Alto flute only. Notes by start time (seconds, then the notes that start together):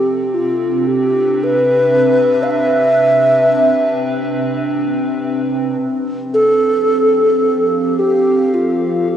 Already playing: G4
0.34 F4
0.87 G4
1.44 B4
2.43 F5
2.51 E5
6.34 A4
7.99 G4
8.54 F4
9.09 G4